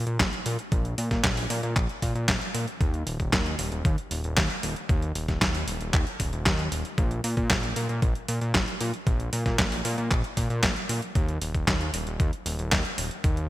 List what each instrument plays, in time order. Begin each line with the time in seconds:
0.07 analog synth bass A#2, closed hi-hat
0.20 analog synth bass A#1, kick, snare, clap, closed hi-hat
0.33 closed hi-hat
0.46 analog synth bass A#2, open hi-hat
0.59 closed hi-hat
0.72 analog synth bass A#1, kick, closed hi-hat
0.85 closed hi-hat
0.98 analog synth bass A#2, open hi-hat
1.11 analog synth bass A#2, kick, snare, closed hi-hat
1.24 analog synth bass A#1, kick, snare, clap, closed hi-hat
1.37 open hi-hat
1.50 analog synth bass A#2, open hi-hat
1.63 analog synth bass A#2, closed hi-hat
1.76 analog synth bass A#1, kick, clap, closed hi-hat
1.89 closed hi-hat
2.02 analog synth bass A#2, kick, open hi-hat
2.15 analog synth bass A#2, closed hi-hat
2.28 analog synth bass A#1, kick, snare, clap, closed hi-hat
2.42 closed hi-hat
2.54 analog synth bass A#2, open hi-hat
2.68 closed hi-hat
2.81 analog synth bass D#2, kick, closed hi-hat
2.94 closed hi-hat
3.07 analog synth bass D#1, open hi-hat
3.20 analog synth bass D#1, kick, closed hi-hat
3.33 analog synth bass D#2, kick, snare, clap, closed hi-hat
3.46 closed hi-hat
3.59 analog synth bass D#1, open hi-hat
3.72 analog synth bass D#1, closed hi-hat
3.85 analog synth bass D#2, kick, closed hi-hat
3.98 closed hi-hat
4.11 analog synth bass D#1, open hi-hat
4.24 analog synth bass D#1, closed hi-hat
4.37 analog synth bass D#2, kick, snare, clap, closed hi-hat
4.50 closed hi-hat
4.63 analog synth bass D#1, open hi-hat
4.76 closed hi-hat
4.89 analog synth bass D#2, kick, closed hi-hat
5.02 closed hi-hat
5.15 analog synth bass D#1, open hi-hat
5.28 analog synth bass D#1, kick, snare, closed hi-hat
5.41 analog synth bass D#2, kick, snare, clap, closed hi-hat
5.55 open hi-hat
5.68 analog synth bass D#1, open hi-hat
5.81 analog synth bass D#1, closed hi-hat
5.94 analog synth bass D#2, kick, clap, closed hi-hat
6.07 closed hi-hat
6.20 analog synth bass D#1, kick, open hi-hat
6.33 analog synth bass D#1, closed hi-hat
6.46 analog synth bass D#2, kick, snare, clap, closed hi-hat
6.59 closed hi-hat
6.72 analog synth bass D#1, open hi-hat
6.85 closed hi-hat
6.98 analog synth bass A#1, kick, closed hi-hat
7.11 closed hi-hat
7.24 analog synth bass A#2, open hi-hat
7.37 analog synth bass A#2, kick, closed hi-hat
7.50 analog synth bass A#1, kick, snare, clap, closed hi-hat
7.63 closed hi-hat
7.76 analog synth bass A#2, open hi-hat
7.89 analog synth bass A#2, closed hi-hat
8.02 analog synth bass A#1, kick, closed hi-hat
8.15 closed hi-hat
8.28 analog synth bass A#2, open hi-hat
8.41 analog synth bass A#2, closed hi-hat
8.54 analog synth bass A#1, kick, snare, clap, closed hi-hat
8.68 closed hi-hat
8.81 analog synth bass A#2, open hi-hat
8.94 closed hi-hat
9.07 analog synth bass A#1, kick, closed hi-hat
9.20 closed hi-hat
9.33 analog synth bass A#2, open hi-hat
9.46 analog synth bass A#2, kick, snare, closed hi-hat
9.59 analog synth bass A#1, kick, snare, clap, closed hi-hat
9.72 open hi-hat
9.85 analog synth bass A#2, open hi-hat
9.98 analog synth bass A#2, closed hi-hat
10.11 analog synth bass A#1, kick, clap, closed hi-hat
10.24 closed hi-hat
10.37 analog synth bass A#2, kick, open hi-hat
10.50 analog synth bass A#2, closed hi-hat
10.63 analog synth bass A#1, kick, snare, clap, closed hi-hat
10.76 closed hi-hat
10.89 analog synth bass A#2, open hi-hat
11.02 closed hi-hat
11.15 analog synth bass D#2, kick, closed hi-hat
11.29 closed hi-hat
11.41 analog synth bass D#1, open hi-hat
11.54 analog synth bass D#1, kick, closed hi-hat
11.68 analog synth bass D#2, kick, snare, clap, closed hi-hat
11.81 closed hi-hat
11.94 analog synth bass D#1, open hi-hat
12.07 analog synth bass D#1, closed hi-hat
12.20 analog synth bass D#2, kick, closed hi-hat
12.33 closed hi-hat
12.46 analog synth bass D#1, open hi-hat
12.59 analog synth bass D#1, closed hi-hat
12.72 analog synth bass D#2, kick, snare, clap, closed hi-hat
12.85 closed hi-hat
12.98 analog synth bass D#1, open hi-hat
13.11 closed hi-hat
13.24 analog synth bass D#2, kick, closed hi-hat
13.37 closed hi-hat